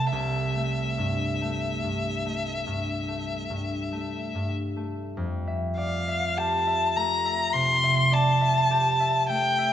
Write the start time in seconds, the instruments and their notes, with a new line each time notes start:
Already playing: harp C3 A3, violin A5
0.12 harp C2, violin E5
0.55 harp A3
0.98 harp G2
1.41 harp A3
1.83 harp G2
2.26 harp A3
2.67 harp G2
3.08 harp A3
3.50 harp G2
3.92 harp A3
4.35 harp G2
4.76 harp A3
5.17 harp F2
5.47 harp E5
5.77 harp D5, violin F5
6.08 harp E5
6.37 harp G4, violin A5
6.67 harp E5
6.96 harp A3, violin A#5
7.25 harp E5
7.53 harp C3, violin C6
7.83 harp E5
8.12 harp D5, violin A5
8.41 harp E5
8.71 harp G4
9.00 harp E5
9.29 harp A3, violin G5
9.58 harp E5